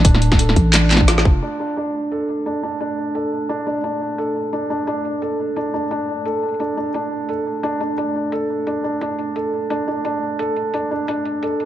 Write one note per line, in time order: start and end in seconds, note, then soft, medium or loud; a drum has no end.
0.00 0.05 D4 medium
0.00 0.39 A4 medium
0.05 0.55 D1 loud
0.05 0.38 D4 medium
0.05 kick loud
0.05 closed hi-hat medium
0.15 snare medium
0.22 closed hi-hat soft
0.32 kick loud
0.32 snare medium
0.39 0.72 A4 medium
0.39 closed hi-hat medium
0.49 snare medium
0.56 1.27 A1 loud
0.56 kick medium
0.56 closed hi-hat soft
0.74 0.90 D4 medium
0.74 clap loud
0.74 snare medium
0.74 closed hi-hat medium
0.91 clap medium
0.91 snare soft
0.91 closed hi-hat soft
0.94 snare medium
0.97 snare medium
1.01 kick medium
1.08 1.24 F4 medium
1.08 snare medium
1.08 closed hi-hat medium
1.18 snare medium
1.25 1.41 F1 loud
1.25 kick loud
1.43 1.58 D4 medium
1.43 closed hi-hat medium
1.60 1.71 D4 medium
1.77 2.10 D4 medium
1.77 closed hi-hat medium
2.12 2.45 A4 medium
2.12 closed hi-hat medium
2.29 closed hi-hat soft
2.46 2.62 D4 medium
2.46 closed hi-hat medium
2.63 2.74 D4 medium
2.81 3.14 D4 medium
2.81 closed hi-hat medium
3.15 3.48 A4 medium
3.15 closed hi-hat medium
3.49 3.65 D4 medium
3.49 closed hi-hat medium
3.67 3.78 D4 medium
3.67 closed hi-hat soft
3.84 4.17 D4 medium
3.84 closed hi-hat medium
4.18 4.51 A4 medium
4.18 closed hi-hat medium
4.53 4.69 D4 medium
4.53 closed hi-hat medium
4.70 4.81 D4 medium
4.87 5.20 D4 medium
4.87 closed hi-hat medium
5.05 closed hi-hat soft
5.22 5.55 A4 medium
5.22 closed hi-hat medium
5.56 5.72 D4 medium
5.56 closed hi-hat medium
5.74 5.85 D4 medium
5.91 6.24 D4 medium
5.91 closed hi-hat medium
6.25 6.58 A4 medium
6.25 closed hi-hat medium
6.43 closed hi-hat soft
6.49 closed hi-hat soft
6.54 closed hi-hat soft
6.60 6.76 D4 medium
6.60 closed hi-hat medium
6.77 6.88 D4 medium
6.94 7.27 D4 medium
6.94 closed hi-hat medium
7.29 7.62 A4 medium
7.29 closed hi-hat medium
7.63 7.79 D4 medium
7.63 closed hi-hat medium
7.81 7.92 D4 medium
7.81 closed hi-hat soft
7.98 8.31 D4 medium
7.98 closed hi-hat medium
8.32 8.65 A4 medium
8.32 closed hi-hat medium
8.67 8.83 D4 medium
8.67 closed hi-hat medium
8.84 8.95 D4 medium
9.01 9.34 D4 medium
9.01 closed hi-hat medium
9.19 closed hi-hat soft
9.36 9.69 A4 medium
9.36 closed hi-hat medium
9.70 9.86 D4 medium
9.70 closed hi-hat medium
9.88 9.98 D4 medium
10.05 10.38 D4 medium
10.05 closed hi-hat medium
10.39 10.72 A4 medium
10.39 closed hi-hat medium
10.56 closed hi-hat soft
10.74 10.90 D4 medium
10.74 closed hi-hat medium
10.91 11.02 D4 medium
11.08 11.41 D4 medium
11.08 closed hi-hat medium
11.25 closed hi-hat soft
11.43 11.65 A4 medium
11.43 closed hi-hat medium
11.60 closed hi-hat soft